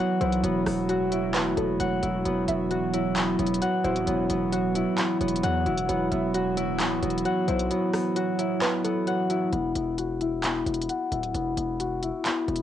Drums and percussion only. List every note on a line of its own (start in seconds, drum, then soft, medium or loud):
0.21 closed hi-hat medium
0.32 closed hi-hat medium
0.44 closed hi-hat medium
0.66 cross-stick loud
0.66 open hi-hat medium
0.89 closed hi-hat medium
1.12 closed hi-hat medium
1.35 clap loud
1.35 closed hi-hat medium
1.57 closed hi-hat medium
1.80 closed hi-hat medium
2.03 closed hi-hat medium
2.25 closed hi-hat medium
2.48 closed hi-hat medium
2.71 closed hi-hat medium
2.94 closed hi-hat medium
3.16 clap loud
3.16 closed hi-hat medium
3.39 closed hi-hat soft
3.46 closed hi-hat medium
3.54 closed hi-hat medium
3.62 closed hi-hat medium
3.84 closed hi-hat medium
3.96 closed hi-hat medium
4.07 closed hi-hat medium
4.30 closed hi-hat medium
4.53 closed hi-hat medium
4.75 closed hi-hat medium
4.98 clap loud
4.98 closed hi-hat medium
5.21 closed hi-hat medium
5.28 closed hi-hat medium
5.36 closed hi-hat medium
5.44 closed hi-hat medium
5.66 closed hi-hat medium
5.78 closed hi-hat medium
5.89 closed hi-hat medium
6.12 closed hi-hat medium
6.34 closed hi-hat medium
6.57 closed hi-hat medium
6.80 clap loud
6.80 closed hi-hat medium
7.03 closed hi-hat medium
7.10 closed hi-hat medium
7.18 closed hi-hat medium
7.25 closed hi-hat medium
7.48 closed hi-hat medium
7.59 closed hi-hat medium
7.71 closed hi-hat medium
7.93 cross-stick loud
7.93 open hi-hat medium
8.16 closed hi-hat medium
8.39 closed hi-hat medium
8.62 clap loud
8.62 closed hi-hat medium
8.85 closed hi-hat medium
9.07 closed hi-hat medium
9.30 closed hi-hat medium
9.53 closed hi-hat medium
9.75 closed hi-hat medium
9.98 closed hi-hat medium
10.21 closed hi-hat medium
10.44 clap loud
10.44 closed hi-hat medium
10.66 closed hi-hat soft
10.74 closed hi-hat medium
10.81 closed hi-hat medium
10.89 closed hi-hat medium
11.12 closed hi-hat medium
11.23 closed hi-hat medium
11.35 closed hi-hat medium
11.57 closed hi-hat medium
11.80 closed hi-hat medium
12.03 closed hi-hat medium
12.25 clap loud
12.25 closed hi-hat medium
12.48 closed hi-hat soft
12.56 closed hi-hat medium